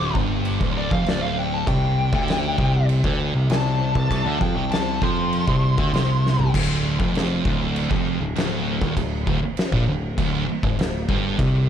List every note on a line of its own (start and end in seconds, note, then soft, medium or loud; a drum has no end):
0.00 0.12 D1 loud
0.00 0.14 D2 loud
0.00 0.14 D6 loud
0.15 0.57 G1 loud
0.15 0.59 G2 loud
0.15 kick loud
0.45 crash medium
0.60 0.89 D1 medium
0.60 0.90 D2 loud
0.60 kick loud
0.78 0.91 D5 loud
0.91 1.05 F1 loud
0.91 1.05 F2 loud
0.91 1.07 F5 medium
0.91 kick loud
1.06 1.63 D1 loud
1.06 1.66 D2 loud
1.06 1.22 D5 medium
1.06 snare loud
1.06 crash medium
1.22 1.37 F5 medium
1.39 1.54 G5 loud
1.54 1.68 A5 medium
1.67 2.10 C2 medium
1.67 2.12 C3 loud
1.67 2.86 G5 loud
1.67 kick loud
1.67 crash medium
2.12 2.55 D2 loud
2.12 2.57 D3 loud
2.12 kick loud
2.28 snare loud
2.28 crash medium
2.58 3.01 C2 medium
2.58 3.03 C3 loud
2.58 kick loud
2.89 crash medium
3.04 3.32 D2 loud
3.04 3.33 D3 loud
3.04 kick loud
3.34 3.49 C2 medium
3.34 3.48 C3 medium
3.50 3.92 C2 medium
3.50 3.94 C3 loud
3.50 4.39 A5 loud
3.50 snare loud
3.50 crash medium
3.95 4.09 C2 loud
3.95 4.08 C3 loud
3.95 kick loud
4.09 4.25 C2 loud
4.09 4.24 C3 loud
4.09 kick loud
4.09 crash medium
4.24 4.40 D2 loud
4.24 4.39 D3 loud
4.40 4.55 F2 loud
4.40 4.55 F3 loud
4.40 4.71 G5 loud
4.40 kick loud
4.55 4.98 C2 loud
4.55 5.00 C3 loud
4.71 5.01 A5 medium
4.71 snare loud
4.71 crash medium
5.01 5.44 F2 medium
5.01 5.46 F3 loud
5.01 6.50 C6 loud
5.01 kick loud
5.33 crash medium
5.46 5.75 C2 medium
5.46 5.76 C3 loud
5.46 kick loud
5.78 5.91 D2 loud
5.78 5.92 D3 loud
5.78 kick loud
5.92 6.49 C2 loud
5.92 6.52 C3 loud
5.92 snare loud
5.92 crash medium
6.26 snare medium
6.39 floor tom loud
6.53 6.96 D1 loud
6.53 6.98 D2 loud
6.53 kick loud
6.53 crash loud
6.53 crash medium
7.00 7.42 F1 loud
7.00 7.44 F2 loud
7.00 kick loud
7.15 snare loud
7.15 crash medium
7.45 7.87 D1 loud
7.45 7.89 D2 loud
7.45 kick loud
7.76 crash medium
7.90 8.18 F1 medium
7.90 8.19 F2 loud
7.90 kick loud
8.20 8.34 D1 medium
8.20 8.34 D2 medium
8.36 8.78 D1 loud
8.36 8.80 D2 loud
8.36 snare loud
8.36 crash medium
8.81 8.95 D#1 loud
8.81 8.96 D#2 loud
8.81 kick loud
8.97 9.25 D1 medium
8.97 9.21 D2 medium
8.97 kick loud
8.97 crash medium
9.26 9.41 D1 loud
9.26 9.41 D2 loud
9.26 kick loud
9.42 muted distorted electric guitar stroke medium
9.42 muted picked electric bass stroke soft
9.57 snare loud
9.57 crash medium
9.72 9.86 A#1 loud
9.72 9.86 A#2 loud
9.72 kick loud
9.87 10.15 D1 medium
9.87 10.11 D2 medium
10.18 10.46 D1 loud
10.18 10.47 D2 loud
10.18 kick loud
10.18 crash medium
10.48 muted picked electric bass stroke soft
10.48 muted distorted electric guitar stroke medium
10.63 10.77 G#1 loud
10.63 10.77 G#2 loud
10.63 kick loud
10.79 11.07 D1 medium
10.79 11.03 D2 medium
10.79 snare loud
10.79 crash medium
11.08 11.37 G1 loud
11.08 11.38 G2 loud
11.08 kick loud
11.39 11.69 C2 loud
11.39 11.69 C3 loud
11.39 kick loud
11.39 crash medium